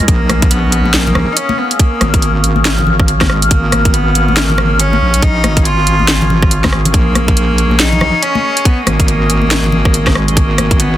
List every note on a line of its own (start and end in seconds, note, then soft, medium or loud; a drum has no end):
0.00 10.97 C#4 medium
0.08 1.14 A#1 medium
0.08 0.53 A#3 loud
0.08 10.97 G#4 medium
0.08 6.92 F5 loud
0.08 kick loud
0.08 closed hi-hat medium
0.29 cross-stick medium
0.29 closed hi-hat medium
0.29 high conga medium
0.42 kick loud
0.42 closed hi-hat medium
0.51 0.95 B3 loud
0.51 closed hi-hat medium
0.72 closed hi-hat medium
0.85 high conga medium
0.94 1.34 A#3 loud
0.94 snare loud
0.94 closed hi-hat medium
1.07 low conga medium
1.15 1.27 A#1 medium
1.15 cross-stick medium
1.15 low conga medium
1.32 1.38 D#4 medium
1.37 1.60 C#4 loud
1.37 closed hi-hat medium
1.49 high conga medium
1.58 1.79 B3 medium
1.71 closed hi-hat medium
1.79 2.61 A#3 medium
1.79 kick loud
1.79 closed hi-hat medium
2.01 3.71 G#1 medium
2.01 cross-stick medium
2.01 closed hi-hat medium
2.01 high conga loud
2.14 kick loud
2.14 closed hi-hat medium
2.22 closed hi-hat medium
2.44 closed hi-hat medium
2.56 high conga medium
2.65 snare loud
2.65 closed hi-hat medium
2.79 low conga medium
2.87 low conga medium
3.00 kick loud
3.00 cross-stick medium
3.08 closed hi-hat medium
3.21 kick medium
3.21 cross-stick medium
3.21 snare soft
3.21 high conga medium
3.30 3.50 G#3 medium
3.30 cross-stick medium
3.42 closed hi-hat medium
3.51 3.96 A#3 loud
3.51 kick loud
3.51 closed hi-hat medium
3.72 5.00 G#1 medium
3.72 cross-stick medium
3.72 closed hi-hat medium
3.72 high conga medium
3.85 kick loud
3.85 closed hi-hat medium
3.94 4.38 B3 medium
3.94 closed hi-hat medium
4.15 closed hi-hat medium
4.28 high conga medium
4.37 4.81 A#3 loud
4.37 snare loud
4.37 closed hi-hat medium
4.50 low conga medium
4.58 cross-stick medium
4.58 low conga medium
4.80 5.24 C#4 loud
4.80 closed hi-hat medium
4.93 high conga loud
5.01 5.45 A#1 medium
5.14 closed hi-hat medium
5.22 5.67 D#4 loud
5.22 kick loud
5.22 closed hi-hat medium
5.44 6.72 G#1 medium
5.44 cross-stick medium
5.44 closed hi-hat medium
5.44 high conga loud
5.57 kick loud
5.57 closed hi-hat medium
5.65 6.51 F4 loud
5.65 closed hi-hat medium
5.87 closed hi-hat medium
5.99 high conga medium
6.08 snare loud
6.08 closed hi-hat medium
6.22 low conga medium
6.30 low conga medium
6.42 kick loud
6.42 cross-stick medium
6.51 closed hi-hat medium
6.64 kick medium
6.64 cross-stick medium
6.64 snare soft
6.64 high conga loud
6.73 6.93 G#1 medium
6.73 cross-stick medium
6.85 closed hi-hat medium
6.85 low conga medium
6.94 8.00 A#1 loud
6.94 7.81 A#3 loud
6.94 10.97 D#5 loud
6.94 kick loud
6.94 closed hi-hat medium
7.15 cross-stick medium
7.15 closed hi-hat medium
7.15 high conga loud
7.28 kick loud
7.28 closed hi-hat medium
7.37 closed hi-hat medium
7.58 closed hi-hat medium
7.71 high conga medium
7.80 8.24 D#4 loud
7.80 snare loud
7.80 closed hi-hat medium
7.92 low conga medium
8.01 8.13 A#1 medium
8.01 cross-stick medium
8.01 low conga medium
8.22 8.67 C#4 loud
8.22 closed hi-hat medium
8.35 high conga medium
8.57 closed hi-hat medium
8.65 8.86 B3 loud
8.65 kick loud
8.65 closed hi-hat medium
8.87 10.57 G#1 medium
8.87 10.17 A#3 loud
8.87 cross-stick medium
8.87 closed hi-hat medium
8.87 high conga medium
9.00 kick loud
9.00 closed hi-hat soft
9.08 closed hi-hat medium
9.30 closed hi-hat soft
9.42 high conga medium
9.51 snare loud
9.51 closed hi-hat medium
9.64 low conga medium
9.72 low conga medium
9.85 kick loud
9.85 cross-stick medium
9.94 closed hi-hat medium
10.06 kick medium
10.06 cross-stick medium
10.06 snare soft
10.06 high conga medium
10.15 10.38 G#3 medium
10.15 cross-stick medium
10.28 closed hi-hat medium
10.37 10.81 A#3 loud
10.37 kick loud
10.37 closed hi-hat medium
10.58 10.97 G#1 medium
10.58 cross-stick medium
10.58 closed hi-hat medium
10.58 high conga medium
10.71 kick loud
10.71 closed hi-hat medium
10.80 10.97 B3 loud
10.80 closed hi-hat medium